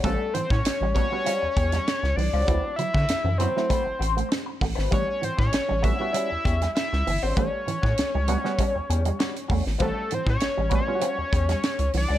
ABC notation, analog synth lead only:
X:1
M:4/4
L:1/16
Q:1/4=98
K:Amix
V:1 name="Analog synth lead"
A2 =c ^c3 c8 d2- | d2 e4 =c6 z4 | c2 =c ^c3 e e4- e e3 =c | c12- c2 z2 |
A2 =c ^c3 c8 d2 |]